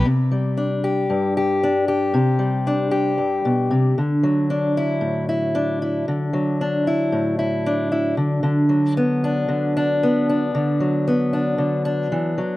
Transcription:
\new Staff \with { instrumentName = "Steel-string acoustic guitar" } { \time 4/4 \key c \lydian \tempo 4 = 114 << { r4 d'8 g'4 g'8 d'8 g'8~ | g'4 d'8 g'2 r8 | r8 d'8 e'4 e'8 d'8 e'8 r8 | r8 d'8 e'4 e'8 d'8 e'8 r8 |
r4 b8 d'4 d'8 b8 d'8~ | d'4 b8 d'4 d'4. | } \\ { c8 g4. g,2 | c8 g4. g,8 b,8 c8 d8 | fis4. a,2 d8 | fis4. a,2 d8 |
d8 fis4. d2 | d8 fis4. d4 e8 fis8 | } >> }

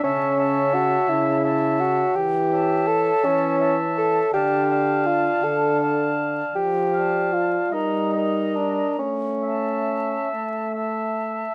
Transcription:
<<
  \new Staff \with { instrumentName = "Flute" } { \time 6/8 \key a \major \tempo 4. = 54 a''8 a''4. a''4 | \key d \minor r8 a''4. a''4 | a''8 a''4. a''4 | r8 a''4 bes''8 bes''4 |
r8 a''4. a''4 | }
  \new Staff \with { instrumentName = "Oboe" } { \time 6/8 \key a \major e''8 e''4. e''4 | \key d \minor r8 e''4. e''4 | f''8 f''4. f''4 | r8 f''4 ees''8 ees''4 |
r8 e''4. e''4 | }
  \new Staff \with { instrumentName = "Clarinet" } { \time 6/8 \key a \major cis''8 cis''4. cis''4 | \key d \minor r8 cis''4. cis''4 | d''8 d''4. d''4 | r8 d''4 bes'8 bes'4 |
r8 e''4. e''4 | }
  \new Staff \with { instrumentName = "Bassoon" } { \time 6/8 \key a \major cis'4 fis'8 e'4 fis'8 | \key d \minor g'4 a'8 cis'4 a'8 | g'4 f'8 a'4 r8 | g'4 f'8 ees'4 d'8 |
cis'4. r4. | }
  \new Staff \with { instrumentName = "French horn" } { \clef bass \time 6/8 \key a \major cis4. cis4. | \key d \minor e4. e4. | d4. d4. | f4. g4. |
a4. a4. | }
>>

